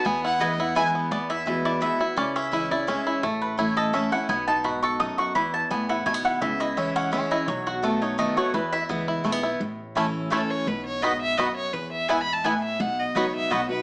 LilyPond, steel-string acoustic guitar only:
\new Staff \with { instrumentName = "Steel-string acoustic guitar" } { \time 3/4 \key e \major \tempo 4 = 170 << { r4 <e gis b e'>8 <b e'>8 <e gis b e'>4 | r4 <e gis b fis'>4 <e gis b fis'>8 <b fis'>8 | r4 <e gis cis' e'>8 <cis' e'>8 <e gis cis' e'>4 | r4 <e a cis' e'>4 <e a cis' e'>8 <cis' e'>8 |
r2. | r2. | r4 <e gis cis' e'>4 <e gis cis' e'>4 | r4 <dis a b fis'>8 <b fis'>8 <dis a b fis'>8 <b fis'>8 |
r4 <e gis b e'>4 <e gis b e'>8 <b e'>8 | r4 <e a cis' e'>4 <e a cis' e'>4 | r2. | r2. |
r4 <fis b dis' fis'>4 <fis b dis' fis'>8 <dis' fis'>8 | } \\ { e,2 r4 | e,2 r4 | cis2 r4 | a,2 r4 |
b,4 gis,4 fis,4 | e,4 a,4 b,4 | cis2 r4 | b,2 r4 |
e,2 r4 | a,2 r4 | b,4 gis,4 fis,4 | e,4 gis,4 a,4 |
b,2 r4 | } >> }